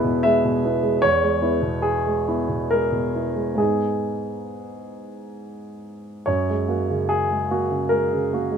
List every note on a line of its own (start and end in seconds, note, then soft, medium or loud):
0.00 1.00 E2 medium
0.00 0.04 B2 soft
0.00 0.25 G#3 soft
0.00 0.65 B3 soft
0.00 0.65 E4 medium
0.00 0.24 B4 medium
0.04 0.37 B2 soft
0.23 0.57 G#3 medium
0.23 1.04 E5 medium
0.45 0.77 B2 soft
0.65 0.83 B3 soft
0.65 0.83 E4 soft
0.83 1.04 G#3 soft
1.02 3.54 E2 medium
1.02 1.84 C#5 medium
1.23 1.56 G#3 soft
1.42 1.61 B3 soft
1.42 1.62 E4 soft
1.62 2.30 B2 soft
1.82 2.68 G#4 medium
2.07 2.40 G#3 soft
2.28 2.47 B3 soft
2.28 2.47 E4 soft
2.49 2.83 B2 soft
2.71 3.06 G#3 soft
2.71 3.59 A#4 medium
2.92 3.27 B2 soft
3.14 3.34 B3 soft
3.14 3.34 E4 soft
3.36 3.55 G#3 soft
3.55 6.21 G#2 soft
3.55 6.22 G#3 soft
3.55 6.22 B3 soft
3.55 5.83 G#4 soft
3.59 6.23 D#4 soft
6.26 8.58 F#2 soft
6.26 7.09 C#5 medium
6.50 6.82 G#3 soft
6.68 6.87 A#3 soft
6.68 6.88 F#4 soft
6.90 7.56 C#3 soft
7.09 7.92 G#4 medium
7.31 7.64 G#3 soft
7.51 7.70 A#3 soft
7.51 7.70 F#4 soft
7.71 8.04 C#3 soft
7.89 8.25 G#3 soft
7.89 8.58 A#4 medium
8.13 8.45 C#3 soft
8.33 8.51 A#3 soft
8.33 8.52 F#4 soft
8.52 8.58 G#3 soft